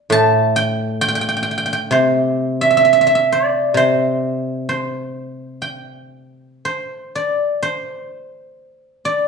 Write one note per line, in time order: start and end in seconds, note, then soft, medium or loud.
0.00 0.14 D5 medium
0.10 1.91 A2 medium
0.10 1.57 A5 medium
0.56 1.01 G5 medium
1.01 1.08 G5 medium
1.08 1.15 G5 medium
1.15 1.21 G5 medium
1.21 1.28 G5 medium
1.29 1.36 G5 medium
1.37 1.42 G5 medium
1.43 1.51 G5 medium
1.51 1.57 G5 soft
1.58 1.65 G5 medium
1.66 1.72 G5 medium
1.73 3.28 G5 medium
1.91 3.73 C3 medium
1.91 3.77 C5 medium
2.61 2.70 E5 medium
2.71 2.77 E5 medium
2.77 2.84 E5 medium
2.85 2.92 E5 soft
2.93 3.01 E5 medium
3.01 3.06 E5 medium
3.07 3.15 E5 medium
3.15 4.87 E5 medium
3.32 5.17 D5 medium
3.74 6.61 C3 soft
3.74 4.69 C5 medium
4.69 6.65 C5 medium
5.62 7.17 G5 medium
6.65 7.62 C5 medium
7.15 9.00 D5 medium
7.63 9.28 C5 medium
9.05 9.28 D5 medium